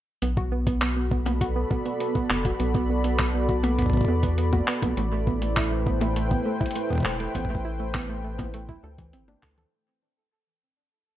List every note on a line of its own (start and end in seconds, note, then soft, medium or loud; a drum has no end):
0.22 1.65 B1 loud
0.22 0.31 B3 medium
0.22 4.98 B3 medium
0.22 closed hi-hat medium
0.37 0.45 F#4 medium
0.37 kick loud
0.52 0.60 B3 medium
0.52 4.97 F#4 medium
0.67 0.79 B3 medium
0.67 kick loud
0.67 closed hi-hat medium
0.82 0.87 B3 medium
0.82 clap loud
0.82 closed hi-hat medium
0.94 1.05 B3 medium
0.94 6.31 A4 medium
0.99 6.16 B5 medium
1.11 1.20 B3 medium
1.11 kick loud
1.26 1.35 B3 medium
1.26 5.74 D5 medium
1.26 closed hi-hat medium
1.26 high tom medium
1.41 1.49 F#4 medium
1.41 kick loud
1.41 closed hi-hat medium
1.56 1.64 B3 medium
1.71 1.83 B3 medium
1.71 kick loud
1.85 1.91 B3 medium
1.85 closed hi-hat medium
2.00 2.09 B3 medium
2.00 closed hi-hat medium
2.15 2.24 B3 medium
2.15 kick loud
2.30 2.53 F#1 medium
2.30 2.39 B3 medium
2.30 clap loud
2.45 2.53 F#4 medium
2.45 kick loud
2.45 closed hi-hat medium
2.60 4.02 B1 loud
2.60 2.68 B3 medium
2.60 closed hi-hat medium
2.75 2.87 B3 medium
2.75 kick loud
2.90 2.95 B3 medium
3.04 3.13 B3 medium
3.04 closed hi-hat medium
3.19 3.28 B3 medium
3.19 kick loud
3.19 clap loud
3.19 closed hi-hat medium
3.34 3.42 B3 medium
3.49 3.57 F#4 medium
3.49 kick loud
3.64 3.72 B3 medium
3.64 closed hi-hat medium
3.64 high tom medium
3.79 3.91 B3 medium
3.79 kick medium
3.79 closed hi-hat medium
3.82 kick medium
3.86 kick medium
3.90 3.98 B3 medium
3.90 kick medium
3.93 kick medium
3.97 kick medium
4.01 kick loud
4.05 4.62 E2 loud
4.05 4.17 B3 medium
4.05 kick loud
4.23 4.32 B3 medium
4.23 kick loud
4.23 closed hi-hat medium
4.38 4.46 B3 medium
4.38 closed hi-hat medium
4.53 4.61 F#4 medium
4.53 kick loud
4.53 high tom medium
4.68 4.76 B3 medium
4.68 clap loud
4.82 4.94 B1 medium
4.82 4.95 B3 medium
4.82 kick loud
4.82 closed hi-hat medium
4.82 high tom medium
4.97 6.40 A1 loud
4.97 9.73 A3 medium
4.97 5.02 A3 medium
4.97 closed hi-hat medium
5.04 9.73 E4 medium
5.12 5.21 A3 medium
5.25 5.36 B3 medium
5.25 9.73 C5 medium
5.25 kick loud
5.42 5.50 A3 medium
5.42 9.73 B4 medium
5.42 closed hi-hat medium
5.57 5.65 E4 medium
5.57 kick loud
5.57 clap loud
5.57 closed hi-hat medium
5.72 5.80 A3 medium
5.72 9.73 G5 medium
5.86 5.99 B3 medium
5.86 kick loud
6.01 6.06 A3 medium
6.01 closed hi-hat medium
6.01 high tom medium
6.16 6.25 A3 medium
6.16 closed hi-hat medium
6.31 6.39 B3 medium
6.31 kick loud
6.46 6.54 A3 medium
6.61 6.69 E4 medium
6.61 kick loud
6.61 closed hi-hat soft
6.66 closed hi-hat soft
6.71 closed hi-hat soft
6.75 6.84 A3 medium
6.75 closed hi-hat medium
6.90 7.03 B3 medium
6.90 kick medium
6.93 kick medium
6.95 kick medium
6.98 kick medium
7.00 kick medium
7.03 7.28 E1 medium
7.03 7.10 A3 medium
7.03 kick loud
7.03 clap loud
7.20 7.29 A3 medium
7.20 closed hi-hat medium
7.35 8.78 A1 loud
7.35 7.44 B3 medium
7.35 kick soft
7.35 closed hi-hat medium
7.45 kick medium
7.50 7.58 A3 medium
7.55 kick medium
7.65 7.73 E4 medium
7.80 7.88 A3 medium
7.94 8.07 B3 medium
7.94 kick loud
7.94 clap loud
7.94 closed hi-hat medium
8.09 8.14 A3 medium
8.24 8.33 A3 medium
8.39 8.47 B3 medium
8.39 kick loud
8.39 closed hi-hat soft
8.39 high tom medium
8.54 8.62 A3 medium
8.54 closed hi-hat medium
8.69 8.77 E4 medium
8.69 kick loud
8.83 9.15 D2 loud
8.83 8.89 A4 medium
8.98 9.07 E3 loud
8.98 kick loud
8.98 closed hi-hat soft
9.13 9.36 G1 medium
9.13 9.22 C4 medium
9.13 closed hi-hat medium
9.28 9.41 D4 loud
9.28 high tom medium
9.43 9.65 D2 loud
9.43 9.51 A4 medium
9.43 kick loud
9.43 clap loud
9.58 9.66 A4 loud
9.58 closed hi-hat medium
9.58 high tom medium